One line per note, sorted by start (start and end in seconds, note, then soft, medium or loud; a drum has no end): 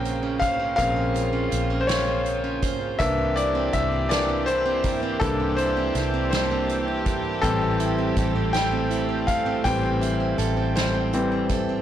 0.00 0.75 A#1 loud
0.00 0.77 C#3 medium
0.00 2.96 C#3 medium
0.00 0.77 A#3 medium
0.00 2.96 A#3 medium
0.00 0.78 C4 medium
0.00 0.22 C#4 medium
0.00 3.02 A#4 medium
0.00 0.41 C5 medium
0.00 0.75 C5 medium
0.00 0.43 G5 medium
0.04 1.13 F4 medium
0.04 closed hi-hat soft
0.23 0.59 C#4 medium
0.39 1.51 C5 medium
0.39 0.48 F5 medium
0.39 kick medium
0.39 closed hi-hat medium
0.60 0.77 C#4 medium
0.76 1.48 A#1 medium
0.76 1.27 C#3 medium
0.76 1.27 A#3 medium
0.76 1.28 C4 medium
0.76 0.95 C#4 medium
0.76 2.97 F4 medium
0.76 1.77 F5 loud
0.76 kick loud
0.76 closed hi-hat loud
0.96 1.32 C#4 medium
1.14 2.24 F4 medium
1.14 closed hi-hat medium
1.33 1.69 C#4 medium
1.51 2.96 A#1 medium
1.51 2.62 C5 medium
1.51 closed hi-hat medium
1.70 1.87 C#4 medium
1.81 1.89 C5 medium
1.87 2.06 C#4 medium
1.87 2.67 C#5 medium
1.87 snare loud
1.87 closed hi-hat medium
2.07 2.43 C#4 soft
2.25 3.07 F4 medium
2.25 closed hi-hat soft
2.44 2.80 C#4 medium
2.62 3.73 C5 medium
2.62 kick medium
2.62 closed hi-hat medium
2.81 3.07 C#4 soft
2.99 3.70 C2 medium
2.99 4.08 E3 medium
2.99 11.82 E3 medium
2.99 4.10 G3 medium
2.99 4.09 A#3 soft
2.99 7.39 A#3 medium
2.99 5.20 C4 medium
2.99 4.09 D4 medium
2.99 11.82 G4 medium
2.99 3.37 E5 loud
2.99 kick loud
2.99 closed hi-hat loud
3.18 3.55 C4 medium
3.36 4.47 E4 medium
3.36 3.74 D5 medium
3.36 closed hi-hat medium
3.55 3.91 C4 medium
3.73 5.17 C2 medium
3.73 4.83 A#4 medium
3.73 4.08 E5 medium
3.73 kick medium
3.73 closed hi-hat medium
3.92 4.29 C4 medium
4.09 4.44 E3 soft
4.09 5.21 G3 medium
4.09 4.44 A#3 soft
4.09 4.44 D4 soft
4.09 4.18 D5 medium
4.09 snare loud
4.09 closed hi-hat loud
4.29 4.65 C4 medium
4.46 5.58 E4 medium
4.46 5.23 C5 medium
4.46 closed hi-hat soft
4.66 5.02 C4 medium
4.84 5.94 A#4 medium
4.84 kick medium
4.84 closed hi-hat medium
5.03 5.40 C4 medium
5.20 5.91 C2 medium
5.20 6.28 E3 medium
5.20 6.32 G3 medium
5.20 6.28 A#3 medium
5.20 7.40 D4 medium
5.20 6.28 D4 medium
5.20 5.59 A4 medium
5.20 kick loud
5.20 closed hi-hat medium
5.40 5.76 C4 medium
5.57 6.69 E4 medium
5.57 6.29 C5 medium
5.57 closed hi-hat medium
5.77 6.13 C4 medium
5.95 7.39 C2 medium
5.95 7.05 A#4 medium
5.95 snare soft
5.95 closed hi-hat medium
6.14 6.51 C4 medium
6.30 7.42 G3 medium
6.30 7.10 C5 medium
6.30 snare loud
6.30 closed hi-hat loud
6.51 6.88 C4 medium
6.69 7.80 E4 medium
6.69 closed hi-hat soft
6.88 7.24 C4 medium
7.06 7.51 A#4 medium
7.06 kick medium
7.06 closed hi-hat medium
7.25 7.61 C4 medium
7.42 8.13 A1 medium
7.42 7.92 E3 medium
7.42 8.53 G3 medium
7.42 7.92 G3 medium
7.42 11.82 A3 medium
7.42 11.82 C4 medium
7.42 7.92 C4 medium
7.42 8.49 A4 loud
7.42 kick loud
7.42 closed hi-hat loud
7.62 7.98 C4 medium
7.80 8.90 E4 medium
7.80 closed hi-hat medium
7.98 8.35 C4 medium
8.17 9.61 A1 medium
8.17 9.27 A4 medium
8.17 kick loud
8.17 closed hi-hat medium
8.36 8.72 C4 medium
8.53 9.63 G3 medium
8.53 9.23 G5 medium
8.53 snare loud
8.53 closed hi-hat medium
8.72 9.08 C4 medium
8.90 10.01 E4 medium
8.90 closed hi-hat soft
9.09 9.46 C4 medium
9.27 10.38 A4 medium
9.27 9.62 F5 medium
9.27 kick medium
9.27 closed hi-hat medium
9.46 9.83 C4 medium
9.64 10.35 A1 medium
9.64 10.72 E3 medium
9.64 10.74 G3 medium
9.64 10.72 G3 medium
9.64 10.72 C4 medium
9.64 10.79 G5 medium
9.64 kick loud
9.64 closed hi-hat loud
9.83 10.20 C4 medium
10.01 11.13 E4 medium
10.01 closed hi-hat medium
10.20 10.56 C4 medium
10.38 11.82 A1 medium
10.38 11.50 A4 medium
10.38 closed hi-hat medium
10.57 10.94 C4 medium
10.76 11.82 G3 medium
10.76 11.55 C5 medium
10.76 snare loud
10.76 closed hi-hat loud
10.94 11.31 C4 medium
11.13 11.47 E3 soft
11.13 11.47 G3 soft
11.13 11.47 C4 medium
11.13 11.82 E4 medium
11.13 closed hi-hat soft
11.32 11.69 C4 medium
11.49 11.82 A4 medium
11.49 kick medium
11.49 closed hi-hat medium
11.69 11.82 C4 medium